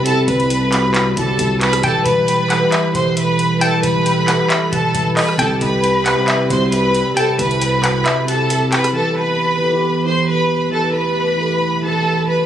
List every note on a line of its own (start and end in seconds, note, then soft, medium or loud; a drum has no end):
0.00 0.03 C3 medium
0.00 1.80 C3 medium
0.00 0.51 C3 loud
0.00 5.35 G3 medium
0.00 0.05 C4 medium
0.00 1.80 C4 medium
0.00 0.06 E4 medium
0.00 1.79 E4 medium
0.00 0.75 F#4 medium
0.00 1.19 G4 loud
0.05 0.52 C4 loud
0.05 0.53 E4 medium
0.05 0.22 A4 loud
0.05 0.54 A4 loud
0.05 0.23 A5 medium
0.05 closed hi-hat medium
0.28 1.13 C2 loud
0.28 1.13 B4 medium
0.28 1.13 B5 medium
0.28 kick loud
0.28 closed hi-hat medium
0.40 closed hi-hat soft
0.50 closed hi-hat medium
0.70 1.03 C3 medium
0.70 1.04 C4 medium
0.70 1.04 E4 medium
0.70 clap medium
0.70 closed hi-hat medium
0.75 1.05 F#4 medium
0.94 clap loud
0.94 closed hi-hat medium
1.14 1.38 C2 loud
1.14 1.62 C3 medium
1.14 1.63 C4 medium
1.14 1.64 E4 medium
1.14 1.59 A4 medium
1.14 1.59 A5 medium
1.14 kick loud
1.14 closed hi-hat medium
1.19 1.65 G4 medium
1.39 1.82 C2 loud
1.39 kick loud
1.39 closed hi-hat medium
1.61 1.78 B4 medium
1.61 1.79 B5 medium
1.61 clap loud
1.61 closed hi-hat soft
1.61 open hi-hat medium
1.73 cross-stick medium
1.73 closed hi-hat medium
1.82 2.05 E1 loud
1.82 2.29 E3 medium
1.82 5.36 E3 medium
1.82 2.30 E4 medium
1.82 8.91 E4 medium
1.82 2.31 G4 medium
1.82 2.01 A4 loud
1.82 3.60 B4 loud
1.82 2.46 G5 loud
1.82 2.01 A5 medium
1.82 kick loud
1.82 closed hi-hat medium
1.87 2.32 B4 loud
2.05 2.60 E1 loud
2.05 2.90 B4 loud
2.05 2.91 B5 medium
2.05 kick loud
2.05 closed hi-hat medium
2.28 closed hi-hat medium
2.48 2.57 E3 medium
2.48 2.58 E4 medium
2.48 2.59 G4 medium
2.48 2.71 F#5 medium
2.48 clap medium
2.48 closed hi-hat medium
2.53 2.60 A4 medium
2.59 2.84 E3 medium
2.59 2.85 E4 medium
2.59 2.86 G4 medium
2.65 2.86 B4 loud
2.72 3.57 E5 medium
2.72 clap loud
2.72 closed hi-hat medium
2.92 3.80 E1 loud
2.92 3.40 E3 medium
2.92 3.41 E4 medium
2.92 3.42 G4 medium
2.92 3.12 C5 loud
2.92 3.12 C6 medium
2.92 kick medium
2.92 closed hi-hat medium
2.98 3.43 A4 medium
3.17 3.59 B4 medium
3.17 3.59 B5 medium
3.17 closed hi-hat medium
3.39 closed hi-hat medium
3.59 4.07 E3 medium
3.59 4.08 E4 medium
3.59 4.09 G4 medium
3.59 3.78 A4 loud
3.59 5.37 A4 loud
3.59 4.24 G5 loud
3.59 3.79 A5 medium
3.59 closed hi-hat medium
3.64 4.09 B4 loud
3.83 4.38 E1 loud
3.83 4.69 B4 medium
3.83 4.69 B5 medium
3.83 kick loud
3.83 closed hi-hat medium
4.06 closed hi-hat medium
4.25 4.58 E3 medium
4.25 4.59 E4 medium
4.25 4.60 G4 medium
4.25 4.49 F#5 medium
4.25 clap medium
4.25 closed hi-hat medium
4.30 4.61 A4 medium
4.50 5.13 E5 medium
4.50 clap loud
4.50 closed hi-hat medium
4.70 4.94 E1 loud
4.70 5.18 E3 medium
4.70 5.19 E4 medium
4.70 5.20 G4 medium
4.70 5.14 A4 medium
4.70 5.15 A5 medium
4.70 kick medium
4.70 closed hi-hat medium
4.75 5.20 B4 medium
4.95 5.16 E1 loud
4.95 kick loud
4.95 closed hi-hat medium
5.17 5.34 B4 medium
5.17 5.38 D#5 medium
5.17 5.34 B5 medium
5.17 clap loud
5.17 open hi-hat medium
5.29 cross-stick medium
5.36 5.60 C2 loud
5.36 5.84 C3 medium
5.36 8.91 C3 medium
5.36 8.91 G3 loud
5.36 5.85 C4 medium
5.36 8.91 C4 medium
5.36 5.86 E4 medium
5.36 5.56 A4 loud
5.36 6.02 G5 loud
5.36 5.57 A5 medium
5.36 kick loud
5.36 closed hi-hat medium
5.41 5.87 G4 loud
5.61 6.15 C2 loud
5.61 6.46 B4 loud
5.61 6.47 B5 medium
5.61 kick loud
5.61 closed hi-hat medium
5.84 closed hi-hat medium
6.03 6.13 C3 medium
6.03 6.14 C4 medium
6.03 6.14 E4 medium
6.03 6.27 F#5 medium
6.03 clap medium
6.03 closed hi-hat medium
6.08 6.15 G4 medium
6.15 6.39 C3 medium
6.15 6.40 C4 medium
6.15 6.41 E4 medium
6.20 6.42 G4 loud
6.28 7.13 E5 medium
6.28 clap loud
6.28 closed hi-hat medium
6.48 7.04 C2 loud
6.48 6.96 C3 medium
6.48 6.97 C4 medium
6.48 6.97 E4 medium
6.48 6.67 C5 medium
6.48 6.68 C6 medium
6.48 kick medium
6.48 closed hi-hat medium
6.53 6.98 F#4 medium
6.72 7.14 B4 medium
6.72 7.14 B5 medium
6.72 closed hi-hat medium
6.95 closed hi-hat medium
7.14 7.62 C3 loud
7.14 7.63 C4 medium
7.14 7.64 E4 medium
7.14 7.34 A4 loud
7.14 7.79 G5 loud
7.14 7.34 A5 medium
7.14 closed hi-hat medium
7.19 7.65 A4 loud
7.39 8.03 C2 loud
7.39 8.24 B4 medium
7.39 8.24 B5 medium
7.39 kick loud
7.39 closed hi-hat medium
7.51 closed hi-hat soft
7.61 closed hi-hat medium
7.81 8.14 C3 medium
7.81 8.15 C4 medium
7.81 8.16 E4 medium
7.81 8.05 F#5 medium
7.81 clap medium
7.81 closed hi-hat medium
7.86 8.16 F#4 medium
8.06 8.68 E5 medium
8.06 clap loud
8.06 closed hi-hat medium
8.25 8.73 C3 medium
8.25 8.74 C4 medium
8.25 8.75 E4 medium
8.25 8.70 A4 medium
8.25 8.70 A5 medium
8.25 closed hi-hat medium
8.30 8.76 G4 medium
8.50 closed hi-hat medium
8.72 8.89 B4 medium
8.72 8.94 G5 medium
8.72 8.90 B5 medium
8.72 clap loud
8.72 closed hi-hat soft
8.72 open hi-hat medium
8.84 cross-stick medium
8.84 closed hi-hat medium
8.93 12.46 E2 medium
8.93 9.40 E3 medium
8.93 12.46 E3 medium
8.93 10.71 B3 medium
8.93 9.41 E4 medium
8.93 12.46 G4 medium
8.93 9.42 G4 medium
8.93 9.12 A4 medium
8.93 9.12 A5 medium
8.98 9.43 B4 loud
9.17 10.02 B4 medium
9.17 10.02 B5 medium
9.59 9.68 E3 medium
9.59 9.69 E4 medium
9.59 9.70 G4 medium
9.64 9.71 A4 medium
9.71 9.95 E3 medium
9.71 9.96 E4 medium
9.71 9.97 G4 medium
9.76 9.98 B4 medium
10.04 10.51 E3 medium
10.04 10.52 E4 medium
10.04 10.53 G4 medium
10.04 10.23 C5 medium
10.04 10.23 C6 medium
10.09 10.54 A4 medium
10.28 10.70 B4 medium
10.28 10.70 B5 medium
10.70 11.18 E3 medium
10.70 12.46 A3 medium
10.70 11.19 E4 medium
10.70 11.20 G4 medium
10.70 10.89 A4 loud
10.70 10.90 A5 medium
10.75 11.20 B4 loud
10.95 11.80 B4 medium
10.95 11.80 B5 medium
11.36 11.69 E3 medium
11.36 11.70 E4 medium
11.36 11.71 G4 medium
11.41 11.72 A4 medium
11.81 12.29 E3 medium
11.81 12.30 E4 medium
11.81 12.31 G4 medium
11.81 12.25 A4 medium
11.81 12.26 A5 medium
11.86 12.32 B4 medium
12.28 12.45 B4 medium
12.28 12.45 B5 medium